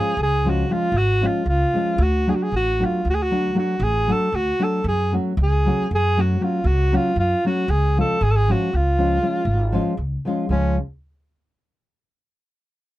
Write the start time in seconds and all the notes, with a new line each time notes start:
Already playing: F3 G#3 C#4 F4 G#4
0.17 C#2
0.23 G#4
0.44 F3 G#3 C#4 F4
0.49 F#4
0.69 F3 G#3 C#4 F4
0.92 G#1
0.97 F#4
1.21 F3 G#3 C#4 F4
1.27 F4
1.46 C#2 F4
1.73 F3 G#3 C#4 F4
1.98 D2 F#4
2.27 F#3 A3 D4 F#4 G#4
2.35 F#4
2.43 G#4
2.52 A1
2.56 F#4
2.79 F#3 A3 D4 F#4
2.84 F4
3.05 D2
3.10 F#4
3.14 G#4
3.22 F#4
3.31 F#3 A3 D4 F#4
3.55 F#3 A3 D4 F#4
3.59 F#4
3.80 A1 G#4
4.07 F#3 A3 D4 F#4
4.12 A4
4.32 D2 F#4
4.59 F#3 A3 D4 F#4
4.64 A4
4.84 F#2 G#4
5.12 F#3 A3 C#4 F#4
5.37 C#2
5.43 G#4
5.66 F#3 A3 C#4 F#4
5.91 F#2 G#4
6.17 F#3 A3 C#4 F#4
6.41 F#3 A3 C#4 F4 F#4
6.64 C#2 F#4
6.92 F#3 A3 C#4 F4 F#4
7.16 F#2 F4
7.45 F#3 A3 C#4 F#4
7.68 C#2 G#4
7.97 F3 G#3 C#4 F4 A4
8.21 G#1 G#4
8.31 A4
8.36 G#4
8.48 F3 G#3 C#4 F4 F#4
8.73 C#2 F4
8.98 F3 G#3 C#4 F4
9.21 F3 G#3 C#4 F4
9.45 G#1
9.72 F3 G#3 C#4 F4
9.97 C#2
10.25 F3 G#3 C#4 F4
10.49 C#2 F3 G#3 C#4 F4